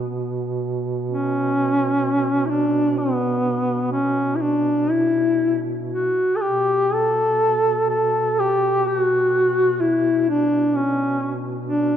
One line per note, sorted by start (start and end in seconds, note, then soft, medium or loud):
0.00 6.25 B2 soft
0.00 0.13 B3 medium
1.11 2.47 C#4 medium
2.46 2.52 E4 medium
2.50 3.00 D4 medium
2.98 3.92 B3 medium
3.92 4.37 C#4 medium
4.36 4.43 E4 medium
4.41 4.93 D4 medium
4.91 5.65 E4 medium
5.93 6.38 F#4 medium
6.36 6.43 A4 medium
6.42 11.97 B2 soft
6.42 6.95 G4 medium
6.93 7.89 A4 loud
7.90 8.41 A4 medium
8.39 8.89 G4 loud
8.87 9.82 F#4 medium
9.81 10.29 E4 medium
10.30 10.77 D4 medium
10.76 11.42 C#4 medium
11.67 11.97 D4 medium